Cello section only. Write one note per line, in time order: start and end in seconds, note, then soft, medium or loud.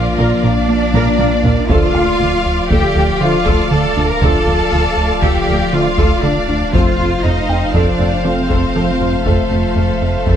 0.00 0.44 F3 medium
0.44 1.70 D4 medium
1.69 2.70 F4 loud
2.71 3.20 G4 medium
3.21 3.71 F4 medium
3.71 4.08 A4 medium
4.09 4.22 A#4 medium
4.22 5.23 A4 loud
5.23 5.72 G4 medium
5.74 6.24 F4 medium
6.24 6.74 D4 medium
6.74 7.24 F4 medium
7.24 7.74 D#4 medium
7.74 8.25 D4 medium
8.25 9.26 C4 medium
9.26 10.37 A3 medium